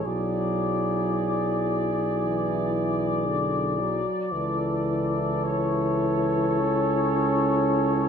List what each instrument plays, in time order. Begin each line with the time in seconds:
0.05 tuba B1, trombone F#3, euphonium E4, flugelhorn G#4, trumpet section D5
2.21 trombone E3
3.27 trombone D3
3.79 trombone F#3
4.32 tuba C#2, trombone E3, euphonium E4, flugelhorn A4
5.44 trumpet section C#5
6.61 trombone C#4